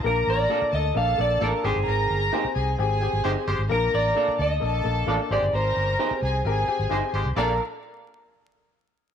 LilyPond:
<<
  \new Staff \with { instrumentName = "Clean electric guitar" } { \time 4/4 \key bes \major \tempo 4 = 131 bes'8 d''4 ees''8 f''8 d''8 bes'8 aes'8~ | aes'4. r2 r8 | bes'8 d''4 ees''4. r8 d''8 | c''2. r4 |
bes'8 r2. r8 | }
  \new Staff \with { instrumentName = "String section" } { \time 4/4 \key bes \major <bes' bes''>4. <a' a''>8 <a' a''>4. r8 | <bes' bes''>4. <aes' aes''>8 <aes' aes''>4. r8 | <bes' bes''>4. <a' a''>8 <a' a''>4. r8 | <bes' bes''>4. <aes' aes''>8 <aes' aes''>4. r8 |
<d' bes' f''>8 r2. r8 | }
  \new Staff \with { instrumentName = "Clean electric guitar" } { \time 4/4 \key bes \major r4 <f' a' d''>16 r4. r16 <f' a' d''>16 r8. | r4 <ees' g' c''>16 r4. r16 <ees' g' c''>16 r8. | r4 <f' a' d''>16 r4. r16 <f' a' d''>16 r8. | r4 <ees' g' c''>16 r4. r16 <ees' g' c''>16 r8. |
<f' a' d''>8 r2. r8 | }
  \new Staff \with { instrumentName = "Horn section" } { \time 4/4 \key bes \major r2. <bes a' d''>16 r16 <aes g' c''>8 | r2. <aes g' c''>16 r16 <aes g' c''>8 | r2. <f d' a'>16 r16 <aes g' c''>8 | r2. <aes g' c''>16 r16 <aes g' c''>8 |
<bes a' d''>8 r2. r8 | }
  \new Staff \with { instrumentName = "Upright piano" } { \time 4/4 \key bes \major <bes d' bes'>4 <bes d' a'>4 <bes d' a'>8 <bes d' a'>8 <bes d' a'>8 <c' aes' g''>8~ | <c' aes' g''>8 r8 <bes c' g' aes'>4 <c' g' aes'>8 <c' g' aes'>8 <c' g' aes'>4 | <bes d' bes'>4 <bes d' a'>4 <bes d' a'>8 <bes d' a'>8 <bes d' a'>8 <c' g' aes'>8~ | <c' g' aes'>8 r8 <ces' c' g' aes'>4 <c' g' bes'>8 <c' g' aes'>8 <c' g' aes'>4 |
<bes d' a'>8 r2. r8 | }
  \new Staff \with { instrumentName = "Upright piano" } { \clef bass \time 4/4 \key bes \major bes,4. r2 aes,8~ | aes,4 r2. | bes,4. r2 aes,8~ | aes,4 r2. |
bes,,8 r2. r8 | }
  \new Staff \with { instrumentName = "Fingered electric bass" } { \clef bass \time 4/4 \key bes \major bes,,8 a,,8 r8 d,8 bes,,8 bes,,8 a,,16 r16 aes,,16 g,,16 | aes,,8 g,,8 r8 c,8 aes,,8. aes,,16 g,,16 r16 g,,16 aes,,16 | bes,,8 a,,8 r8 d,8 bes,,8 bes,,8 a,,16 r16 aes,,16 g,,16 | aes,,8 g,,8 r8 c,8 aes,,8 r16 aes,,16 g,,16 r16 aes,,16 c,16 |
bes,,8 r2. r8 | }
>>